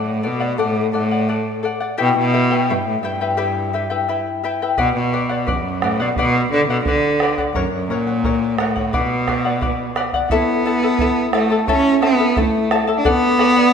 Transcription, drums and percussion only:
4.78 bombo low medium
5.47 bombo low medium
5.82 bombo rim medium
6.16 bombo low medium
6.85 bombo low medium
7.20 bombo rim medium
7.38 bombo low soft
7.55 bombo low medium
8.24 bombo low medium
8.59 bombo rim medium
8.76 bombo low medium
8.94 bombo low medium
9.28 bombo rim soft
9.28 bombo low medium
9.62 bombo low medium
9.96 bombo rim medium
10.13 bombo low soft
10.30 bombo low medium
10.99 bombo low medium
11.33 bombo rim medium
11.68 bombo low medium
12.03 bombo rim soft
12.37 bombo low medium
12.71 bombo rim medium
13.05 bombo low medium
13.39 bombo rim soft

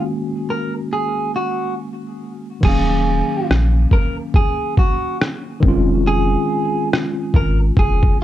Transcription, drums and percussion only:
2.63 kick loud
2.63 crash medium
3.51 cross-stick loud
3.91 kick medium
4.34 kick medium
4.77 kick medium
5.21 cross-stick medium
5.63 kick loud
6.93 cross-stick loud
7.34 kick medium
7.77 kick medium
8.03 kick medium

